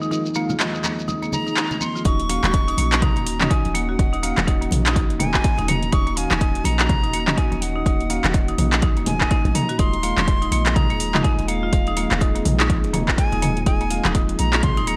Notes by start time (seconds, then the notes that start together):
Already playing: D#2 F3 C4 D#4 G#4
0.02 D#4, shekere
0.11 D#3 G#3 D#4 F4 D#5, muted conga, shekere
0.26 shekere
0.35 D#3 G#3 A#3 F4 F5, muted conga, shekere
0.50 F4, high conga, low conga, shekere
0.60 D#3 G#3 F4 D#5, clap, muted conga, shekere
0.74 D#4, shekere
0.84 A#3, clap, high conga, shekere
0.99 muted conga, shekere
1.08 D#4, high conga, low conga, shekere
1.22 A#3, muted conga, shekere
1.33 A#5, high conga, low conga, shekere
1.47 D#4, muted conga, shekere
1.56 D#4, clap, shekere
1.71 muted conga, high conga, low conga, shekere
1.81 A#3 C6, high conga, shekere
1.95 F4, shekere
2.05 D#1 D#3 A#3 C#4 D#4 F#4 D#5 C#6, kick, closed hi-hat, muted conga
2.20 closed hi-hat
2.29 A#3 C#4 F#4 F5, open hi-hat, muted conga
2.44 D#1 F#4, clap, closed hi-hat, high conga, low conga
2.53 C#4 F#4 D#5, kick, closed hi-hat, muted conga
2.68 D#4, closed hi-hat
2.77 A#1 A#3, open hi-hat, high conga
2.92 clap, closed hi-hat, muted conga
3.02 D#4 A#5, kick, closed hi-hat, mid tom
3.16 D#1 A#3, closed hi-hat, muted conga
3.27 open hi-hat
3.41 C#4 D#4 F#4 D#5, clap, mid tom, muted conga, high conga
3.50 D#4 G#5, kick, closed hi-hat
3.65 D#1, closed hi-hat, muted conga, high conga
3.74 A#3 F#5, open hi-hat
3.89 F#4
3.99 D#1 C#4 F#4 D#5, kick, closed hi-hat, muted conga
4.13 D#4, closed hi-hat
4.23 A#3 C#4 F#4 F5, open hi-hat, muted conga
4.37 D#1, clap, closed hi-hat, high conga, low conga
4.47 C#4 D#4 F#4 D#5, kick, closed hi-hat, muted conga
4.61 A#3, closed hi-hat
4.71 A#1, open hi-hat, mid tom, high conga
4.86 D#4, clap, closed hi-hat, muted conga
4.96 D#4, kick, closed hi-hat, high conga
5.10 D#1, closed hi-hat, muted conga
5.20 A#3 G#5, open hi-hat, mid tom, high conga, low conga
5.34 F#4, kick, clap, muted conga
5.44 kick, closed hi-hat
5.58 D#1 D#4, closed hi-hat, muted conga, high conga, low conga
5.68 A#3 A#5, open hi-hat, mid tom, high conga
5.83 closed hi-hat
5.92 D#1 C#4 D#4 F#4 D#5 C#6, kick, closed hi-hat, muted conga
6.07 A#3, closed hi-hat
6.17 C#4 F#4 F5 G#5, open hi-hat, muted conga
6.30 D#1 D#4, clap, closed hi-hat, high conga, low conga
6.41 C#4 D#4 F#4 D#5, kick, closed hi-hat, muted conga
6.55 closed hi-hat
6.64 A#1 A#3 A#5, open hi-hat, high conga
6.79 F#4, clap, closed hi-hat, muted conga
6.89 kick, closed hi-hat, mid tom
7.03 D#1 D#4, closed hi-hat, muted conga
7.13 A#3, open hi-hat
7.28 C#4 F#4 D#5, clap, mid tom, muted conga, high conga
7.37 D#4 G#5, kick, closed hi-hat
7.52 D#1 A#3, closed hi-hat, muted conga, high conga
7.61 F#5, open hi-hat
7.76 D#4
7.86 D#1 C#4 D#4 F#4 D#5, kick, closed hi-hat, muted conga
8.00 closed hi-hat
8.10 A#3 C#4 F#4 F5, open hi-hat, muted conga
8.24 D#1 F#4, clap, closed hi-hat, high conga, low conga
8.34 C#4 F#4 D#5, kick, closed hi-hat, muted conga
8.48 D#4, closed hi-hat
8.58 A#1 A#3, open hi-hat, mid tom, high conga
8.73 clap, closed hi-hat, muted conga
8.82 D#4, kick, closed hi-hat, high conga
8.97 D#1 A#3, closed hi-hat, muted conga
9.06 G#5, open hi-hat, mid tom, high conga, low conga
9.21 D#4, kick, clap, muted conga
9.31 D#4, kick, closed hi-hat
9.45 A#1, closed hi-hat, muted conga, high conga, low conga
9.55 A#3 A#5, open hi-hat, mid tom, high conga
9.69 F#4, closed hi-hat
9.78 D#1 F3 G#3 C4 D#4 F4 G#4 D#5 C6, kick, closed hi-hat, muted conga
9.93 closed hi-hat
10.03 G#3 A#3 F4 F5, open hi-hat, muted conga
10.17 D#1 F4, clap, closed hi-hat, high conga, low conga
10.27 G#3 F4 D#5, kick, closed hi-hat, muted conga
10.42 D#4, closed hi-hat
10.51 A#1 A#3, open hi-hat, high conga
10.66 clap, closed hi-hat, muted conga
10.75 D#4 A#5, kick, closed hi-hat, mid tom
10.90 D#1 A#3, closed hi-hat, muted conga
11.00 open hi-hat
11.14 G#3 D#4 F4 D#5, clap, mid tom, muted conga, high conga
11.23 D#4 G#5, kick, closed hi-hat
11.39 D#1, closed hi-hat, muted conga, high conga
11.48 A#3 F5, open hi-hat
11.63 F4
11.72 D#1 G#3 F4 D#5, kick, closed hi-hat, muted conga
11.87 D#4, closed hi-hat
11.97 G#3 A#3 F4 F5, open hi-hat, muted conga
12.11 D#1, clap, closed hi-hat, high conga, low conga
12.21 G#3 D#4 F4 D#5, kick, closed hi-hat, muted conga
12.35 A#3, closed hi-hat
12.45 A#1, open hi-hat, mid tom, high conga
12.59 D#4, clap, closed hi-hat, muted conga
12.69 D#4, kick, closed hi-hat, high conga
12.84 D#1, closed hi-hat, muted conga
12.93 A#3, open hi-hat, mid tom, high conga, low conga
13.08 F4, kick, clap, muted conga
13.18 G#5, kick, closed hi-hat
13.32 D#1 D#4, closed hi-hat, muted conga, high conga, low conga
13.42 A#3, open hi-hat, mid tom, high conga
13.57 closed hi-hat
13.66 D#1 G#3 D#4 F4 D#5 G#5, kick, closed hi-hat, muted conga
13.81 A#3, closed hi-hat
13.90 G#3 F4 F5, open hi-hat, muted conga
14.05 D#1 D#4, clap, closed hi-hat, high conga, low conga
14.15 G#3 D#4 F4 D#5, kick, closed hi-hat, muted conga
14.29 closed hi-hat
14.39 A#1 A#3 A#5, open hi-hat, high conga
14.53 F4, clap, closed hi-hat, muted conga
14.63 C6, kick, closed hi-hat, mid tom
14.77 D#1 D#4, closed hi-hat, muted conga
14.87 A#3 A#5, open hi-hat